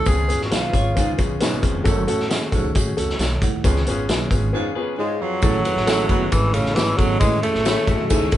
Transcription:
0.06 C#2 F2 B3 C#4 F4 G#4, kick, closed hi-hat, tambourine
0.28 G#1 B3 C#4 F4 G#4, closed hi-hat, tambourine
0.41 F#4, snare
0.51 B1 B3 C#4 F4 G#4 B4, snare, closed hi-hat, tambourine
0.72 G#1 B3 C#4 F4 G#4 C#5, kick, closed hi-hat, tambourine
0.95 C#2 G#2 B3 C#4 F4 G#4, kick, closed hi-hat, tambourine
1.18 B1 B3 C#4 F4 G#4, kick, closed hi-hat, tambourine
1.40 B1 G#2 B3 C#4 F4 B4, snare, closed hi-hat, tambourine
1.62 E1 F2 B3 C#4 F4 G#4, kick, closed hi-hat, tambourine
1.75 F1
1.84 F#1 F#2 A3 C#4 F#4 A4, kick, closed hi-hat, tambourine
2.07 A1 A3 C#4 F#4 A4, closed hi-hat, tambourine
2.19 snare
2.30 A3 C#4 F#4 G#4, snare, closed hi-hat, tambourine
2.52 B1 G#2 A3 C#4 F#4 A4, kick, closed hi-hat, tambourine
2.64 C#2
2.75 A1 A3 C#4 F#4 G#4, kick, closed hi-hat, tambourine
2.97 C#2 A3 C#4 F#4 A4, closed hi-hat, tambourine
3.09 snare
3.19 B1 C#5, snare, closed hi-hat, tambourine
3.42 C2 A2 F#5, kick, closed hi-hat, tambourine
3.64 C#2 F2 B3 C#4 F4 G#4, kick, closed hi-hat, tambourine
3.76 snare
3.87 G#1 B3 C#4 F4 G#4, closed hi-hat, tambourine
4.08 B1 B3 C#4 F4 G#4, snare, closed hi-hat, tambourine
4.31 G#1 B3 C#4 F4 G#4, kick, closed hi-hat, tambourine
4.53 G#2 B3 C#4 F4 G#4
4.75 B3 C#4 F4 G#4 B4
4.98 G#2 G#3 F4 G#4 C#5
5.21 F2 F#3 G#4 B4
5.42 A1 A2 A3 C#4 E4 G#4 A4, kick, ride, tambourine
5.65 A3 C#4 E4 G#4 B4, ride, tambourine
5.76 A1, snare
5.87 A3 C#4 E4 G#4 A4, snare, ride, tambourine
6.09 F#1 B2 A3 C#4 E4 G#4 B4, kick, ride, tambourine
6.32 G#1 E3 A3 C#4 E4 G#4 A4, kick, ride, tambourine
6.54 A1 C#3 A3 C#4 E4 G#4 A4, ride, tambourine
6.65 snare
6.75 G#1 E3 A3 C#4 E4 G#4 A4, snare, ride, tambourine
6.98 G#1 B2 F#3 A3 C#4 E4 G#4 A4, kick, ride, tambourine
7.20 A1 A2 G#3 A3 C#4 E4 G#4 B4, kick, ride, tambourine
7.43 A3 C#4 E4 G#4 A4, ride, tambourine
7.54 A1, snare
7.65 A3 C#4 E4 G#4 A4 C#5, snare, ride, tambourine
7.87 A1 A3 C#4 E4 F#4 G#4 A4, kick, ride, tambourine
8.00 B1
8.10 C#2 G#2 A3 C#4 E4 G#4 A4, kick, ride, tambourine
8.31 B1 A3 C#4 E4 G#4 A4, kick, ride, tambourine

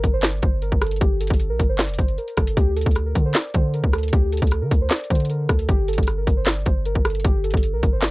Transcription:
Already playing: A#4
0.04 G1, kick, closed hi-hat
0.13 C5
0.23 snare, clap, closed hi-hat
0.42 G1 C5, kick, closed hi-hat
0.62 A#4, closed hi-hat
0.72 G1, kick
0.82 A4, cross-stick, closed hi-hat
0.87 closed hi-hat
0.91 closed hi-hat
0.96 closed hi-hat
1.01 G1 G4, kick, closed hi-hat
1.20 A4, closed hi-hat
1.27 G1, kick, closed hi-hat
1.34 closed hi-hat
1.40 closed hi-hat
1.50 A#1 A#4
1.60 G1, kick, closed hi-hat
1.69 C5
1.79 D5, snare, clap, closed hi-hat
1.84 closed hi-hat
1.89 F1, closed hi-hat
1.94 closed hi-hat
1.98 G1 C5, kick, closed hi-hat
2.08 closed hi-hat
2.18 A#4, closed hi-hat
2.28 closed hi-hat
2.37 G1 A4, kick, cross-stick, closed hi-hat, open hi-hat
2.47 closed hi-hat
2.57 D2 G4, kick, closed hi-hat
2.76 A4, closed hi-hat
2.81 closed hi-hat
2.86 D2, kick, closed hi-hat
2.91 closed hi-hat
2.95 cross-stick, closed hi-hat
3.06 A#4
3.15 D3, kick, closed hi-hat
3.25 C5
3.35 D5, snare, clap, closed hi-hat
3.54 D3 C5, kick, closed hi-hat
3.74 A#4, closed hi-hat
3.84 D2, kick
3.93 A4, cross-stick, closed hi-hat
3.98 closed hi-hat
4.03 closed hi-hat
4.08 closed hi-hat
4.13 D2 G4, kick, closed hi-hat
4.32 A4, closed hi-hat
4.37 closed hi-hat
4.42 D2, kick, closed hi-hat
4.47 closed hi-hat
4.51 cross-stick, closed hi-hat
4.62 D3 A#4
4.71 D2, kick, closed hi-hat
4.81 C5
4.90 D5, snare, clap, closed hi-hat
4.97 closed hi-hat
5.04 closed hi-hat
5.10 D3 C5, kick, closed hi-hat
5.15 closed hi-hat
5.20 closed hi-hat
5.25 closed hi-hat
5.30 A#4, closed hi-hat
5.49 D2 A4, kick, cross-stick, closed hi-hat
5.59 closed hi-hat
5.69 G1 G4, kick, closed hi-hat
5.88 A4, closed hi-hat
5.93 closed hi-hat
5.98 G1, kick, closed hi-hat
6.03 closed hi-hat
6.07 cross-stick, closed hi-hat
6.17 A#4
6.27 G1, kick, closed hi-hat
6.37 C5
6.46 D5, snare, clap, closed hi-hat
6.66 G1 C5, kick, closed hi-hat
6.85 A#4, closed hi-hat
6.95 G1, kick
7.05 A4, cross-stick, closed hi-hat
7.10 closed hi-hat
7.15 closed hi-hat
7.20 closed hi-hat
7.25 G1 G4, kick, closed hi-hat
7.44 A4, closed hi-hat
7.51 G1, kick, closed hi-hat
7.57 closed hi-hat
7.63 closed hi-hat
7.73 A#1 A#4
7.83 G1, kick, closed hi-hat
7.93 C5
8.02 D5, snare, clap, closed hi-hat
8.07 closed hi-hat

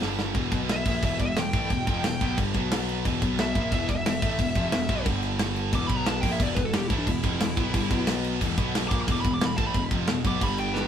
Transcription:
0.02 G1 G2 D3 G3, snare
0.19 snare
0.35 E1 E2 B2 E3, kick, crash
0.52 B1 B2 F#3 B3, kick, crash
0.69 E5, snare, crash
0.85 A#1 A#2 F3 A#3, kick, crash
1.03 E1 E2 B2 E3 E5, kick, crash
1.19 E1 E2 B2 E5, kick, crash
1.36 E1 E2 B2 G5, snare, crash
1.53 A1 A2 E3 A3, kick, crash
1.70 E1 E2 B2, kick, crash
1.87 F1 F2 C3 F3, kick, crash
2.04 E1 E2 B2, snare, crash
2.21 B1 B2 F#3 B3, kick, crash
2.38 G1 G2 D3 G3, kick, crash
2.54 B1 B2 F#3 B3, kick, crash
2.71 snare, crash
2.89 crash
3.05 E1 E2 B2 E3, kick, crash
3.22 B1 B2 F#3 B3, kick, crash
3.39 E5, snare, crash
3.55 A#1 A#2 F3 A#3, kick, crash
3.72 E1 E2 B2 E3 E5, kick, crash
3.89 E1 E2 B2 E5, kick, crash
4.06 E1 E2 B2 E5, snare, crash
4.22 A1 A2 E3 A3, kick, crash
4.39 E1 E2 B2, kick, crash
4.55 F1 F2 C3 F3, kick, crash
4.72 E1 E2 B2, snare, crash
4.89 B1 B2 F#3 B3, kick, crash
5.06 G1 G2 D3 G3, kick, crash
5.23 crash
5.39 snare, crash
5.56 crash
5.73 E1 E2 B2 E3 D6, kick, crash
5.87 B1 B2 F#3 B5, kick, crash
5.91 B3
5.96 A#5
6.06 A5, snare, crash
6.21 A#1 A#2 F3 A#3 G5, kick, crash
6.32 E5
6.40 E1 E2 B2 E3 D5, kick, crash
6.55 E1 E2 B2 B4, kick, crash
6.65 A4
6.73 E1 E2 B2 G4, snare, crash
6.88 A1 A2 E3 A3 E4, kick, crash
6.98 D4
7.07 E1 E2 B2 E4, kick, crash
7.24 F1 F2 C3 F3, kick, crash
7.40 E1 E2 B2, snare, crash
7.57 B1 B2 F#3 B3, kick, crash
7.74 G1 G2 D3 G3, kick, crash
7.91 B1 B2 F#3 B3, kick, crash
8.07 snare, crash
8.24 crash
8.41 E1 E2 B2 E3, kick, crash
8.58 B1 B2 F#3 B3, kick, crash
8.75 snare, crash
8.88 A#1 A#2 F3 D6, kick, crash
8.92 A#3
9.08 E1 E2 B2 E3 D6, kick, crash
9.21 E1 B5, kick
9.25 E2 B2, crash
9.34 D6
9.41 E1 E2 B2 B5, snare, crash
9.57 A1 A2 E3 A3 A5, kick, crash
9.67 B5
9.74 E1 E2 B2, kick, crash
9.91 F1 F2 C3 F3, kick, crash
10.07 E1 E2 B2, snare, crash
10.24 B1 B2 F#3 B3 D6, kick, crash
10.41 G1 G2 D3 G3 B5, kick, crash
10.58 G5, crash
10.74 B4, snare

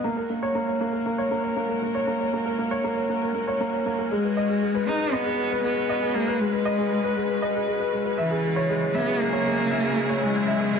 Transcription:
Already playing: G#3 C#4 F#4
0.04 A#3
0.17 A#4
0.30 A#3
0.43 C#5
0.55 A#3
0.68 C#5
0.81 A#3 A#4
0.93 A#4
1.06 A#3
1.18 C#5
1.31 A#3
1.44 C#5
1.56 A#3
1.69 A#4
1.82 A#3
1.95 C#5
2.07 A#3
2.21 C#5
2.33 A#3
2.46 A#4
2.58 A#3
2.71 C#5
2.84 A#3
2.97 C#5
3.09 A#3
3.22 A#4
3.35 A#3
3.48 C#5
3.61 A#3
3.73 C#5
3.86 A#3
3.99 A#4
4.11 G#3
4.24 B4
4.37 D#5
4.50 G#4
4.62 G#3
4.75 B4
4.87 G#3 D#4
5.00 B4
5.13 B3 D#5
5.25 G#4 B4
5.38 G#3
5.51 B4
5.64 G#3 B3
5.77 B4
5.89 D#5
6.02 G#4
6.14 G#3 A#3
6.27 B4
6.40 G#3
6.53 B4
6.65 D#5
6.79 G#4
6.91 G#3
7.04 B4
7.16 G#3
7.29 B4
7.42 D#5
7.55 G#4
7.67 G#3
7.80 B4
7.93 G#3
8.05 B4
8.18 C#3 E3 E5
8.31 G#4
8.44 G#3
8.52 F#3
8.56 C#5
8.69 G#3
8.82 B2 C#5
8.95 B3 E4 E5
9.07 G#4
9.20 G#3 A#3 G#4
9.33 C#5
9.45 G#3
9.58 C#5
9.71 E5
9.84 G#4
9.97 G#3
10.09 C#5
10.22 G#3
10.35 C#5
10.47 E5
10.60 G#4
10.72 G#3

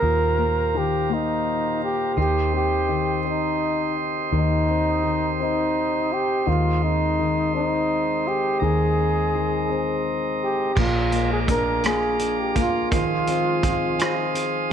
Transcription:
Already playing: D#3 A#3 G4 A#4 C5 A#5
0.02 D#2 A#2 F5
0.38 A#3
0.74 D#3 G4
1.09 A#3
1.13 D#4
1.84 G4
2.17 D#2 D#3 G4 D#5 C6
2.53 C4 G4
2.89 D#3
3.25 C4 D#4
4.32 D#2 D#3 D#4
4.67 C4
5.04 D#3
5.39 C4 D#4
6.13 G4
6.46 D#2 D#3 G#3 F4 D#5
6.82 C4 D#4
7.19 D#3
7.54 C4 D#4
8.28 G4
8.60 D#2 D#3 G#4 A#5
8.98 C4
9.35 D#3
9.69 C4
10.44 G4
10.75 A#1 F3 A#3 F4 G#4 F5 A#5 D6, kick, crash
11.12 G#3 A#3, closed hi-hat
11.32 G#4
11.48 A#3 D4 A#4, kick, closed hi-hat
11.84 A#3 F4 G#4, cross-stick, closed hi-hat
12.19 D4, closed hi-hat
12.40 G4
12.56 A#3 F4, kick, closed hi-hat
12.91 F1 D#3 F3 F4 C6 D#6, kick, closed hi-hat
13.27 G#3 C4, closed hi-hat
13.63 F3 C4, kick, closed hi-hat
13.99 C4 G#4, cross-stick, closed hi-hat
14.34 C4, closed hi-hat

